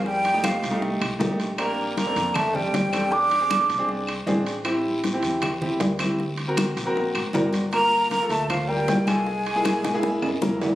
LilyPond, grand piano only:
\new Staff \with { instrumentName = "Grand piano" } { \time 4/4 \key g \dorian \tempo 4 = 156 << { r1 | r1 | r1 | r1 |
r2. d''4 | r1 | r1 | } \\ { r8. <a ees' g'>8. r16 <a ees' g'>8. r8 <a ees' g'>8. r16 | <c' d' g'>4 r16 <c' d' a'>8. r8 <c' d' g'>8. r16 <c' d' a'>8 | r8. <bis d' gis'>8. r16 <bis d' gis'>8. r8 <bis d' gis'>8. r16 | <c' e' g'>4 r16 <c' e' g'>8. r8 <c' e' g'>8. r16 <c' e' g'>8 |
r8. <c' fis' ais'>8. r16 <c' fis' ais'>8. r8 <c' fis' ais'>8. r16 | <bes f' bes'>4 r16 <bes f' a'>8. r8 <bes f' bes'>8. r16 <bes f' a'>8 | r8. <bes e' gis'>8. r16 <bes e' gis'>8. r8 <bes e' bes'>8. r16 | } >> }